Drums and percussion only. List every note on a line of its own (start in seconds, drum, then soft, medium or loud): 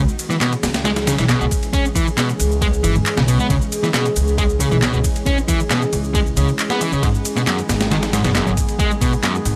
0.08 shaker soft
0.19 ride medium
0.19 shaker medium
0.30 snare medium
0.30 shaker soft
0.41 snare loud
0.41 clap loud
0.41 ride medium
0.41 shaker soft
0.53 ride soft
0.53 shaker soft
0.63 snare loud
0.63 ride medium
0.63 shaker medium
0.74 snare loud
0.74 ride medium
0.74 shaker soft
0.85 snare loud
0.85 ride medium
0.85 shaker soft
0.96 snare loud
0.96 ride medium
0.96 shaker soft
1.07 snare loud
1.07 ride medium
1.07 shaker medium
1.18 snare loud
1.18 ride medium
1.18 shaker soft
1.29 snare loud
1.29 clap loud
1.29 ride medium
1.29 shaker soft
1.41 shaker soft
1.51 kick loud
1.51 ride medium
1.51 shaker medium
1.63 ride soft
1.63 shaker soft
1.73 kick loud
1.73 ride medium
1.73 shaker soft
1.85 shaker soft
1.96 kick loud
1.96 ride medium
1.96 shaker medium
2.07 shaker soft
2.18 snare loud
2.18 clap loud
2.18 ride medium
2.18 shaker soft
2.29 shaker soft
2.40 ride medium
2.40 shaker medium
2.51 shaker soft
2.62 kick loud
2.62 ride medium
2.62 shaker soft
2.73 shaker soft
2.84 ride medium
2.84 shaker medium
2.95 shaker soft
3.06 clap loud
3.06 ride medium
3.06 shaker soft
3.17 snare loud
3.17 shaker soft
3.28 ride medium
3.28 shaker medium
3.40 shaker soft
3.50 kick loud
3.50 ride medium
3.50 shaker soft
3.62 shaker soft
3.72 ride medium
3.72 shaker medium
3.84 snare medium
3.84 shaker soft
3.94 snare loud
3.94 clap loud
3.94 ride medium
3.94 shaker soft
4.06 ride soft
4.06 shaker soft
4.16 ride medium
4.16 shaker medium
4.27 shaker soft
4.38 kick loud
4.38 ride medium
4.38 shaker soft
4.49 shaker soft
4.60 ride medium
4.60 shaker medium
4.71 shaker soft
4.82 snare loud
4.82 clap loud
4.82 ride medium
4.82 shaker soft
4.94 shaker soft
5.04 kick loud
5.04 ride medium
5.04 shaker medium
5.16 ride soft
5.16 shaker soft
5.26 kick loud
5.26 ride medium
5.26 shaker soft
5.38 shaker soft
5.48 kick loud
5.48 ride medium
5.48 shaker medium
5.60 shaker soft
5.71 snare loud
5.71 clap loud
5.71 ride medium
5.71 shaker soft
5.82 shaker soft
5.93 ride medium
5.93 shaker medium
6.04 shaker soft
6.15 kick loud
6.15 ride medium
6.15 shaker soft
6.26 shaker soft
6.37 ride medium
6.37 shaker medium
6.48 shaker soft
6.59 clap loud
6.59 ride medium
6.59 shaker soft
6.70 snare loud
6.70 shaker soft
6.81 ride medium
6.81 shaker medium
6.92 shaker soft
7.03 kick loud
7.03 ride medium
7.03 shaker soft
7.15 shaker soft
7.25 ride medium
7.25 shaker medium
7.37 snare medium
7.37 shaker soft
7.47 snare loud
7.47 clap loud
7.47 ride medium
7.47 shaker soft
7.59 ride soft
7.59 shaker soft
7.69 snare loud
7.69 ride medium
7.69 shaker medium
7.81 snare loud
7.81 ride medium
7.81 shaker soft
7.91 snare loud
7.91 ride medium
7.91 shaker soft
8.03 snare loud
8.03 ride medium
8.03 shaker soft
8.13 snare loud
8.13 ride medium
8.13 shaker medium
8.24 snare loud
8.24 ride medium
8.24 shaker soft
8.35 snare loud
8.35 clap loud
8.35 ride medium
8.35 shaker soft
8.47 shaker soft
8.57 kick loud
8.57 ride medium
8.57 shaker medium
8.69 ride soft
8.69 shaker soft
8.79 kick loud
8.79 ride medium
8.79 shaker soft
8.91 shaker soft
9.01 kick loud
9.01 ride medium
9.01 shaker medium
9.13 shaker soft
9.23 snare loud
9.23 clap loud
9.23 ride medium
9.23 shaker soft
9.35 shaker soft
9.45 ride medium
9.45 shaker medium